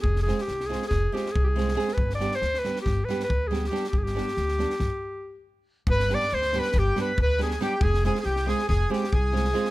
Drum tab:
SD |-oooooooo-oo--oooo|-oooooooo-oo--oooo|-oooooooo---------|-oooooooo-o---ooo-|
BD |o-------o---o-----|o-------o---o-----|o-------o---------|o-------o---o-----|

SD |-oooooooo-oo--oooo|
BD |o-------o---o-----|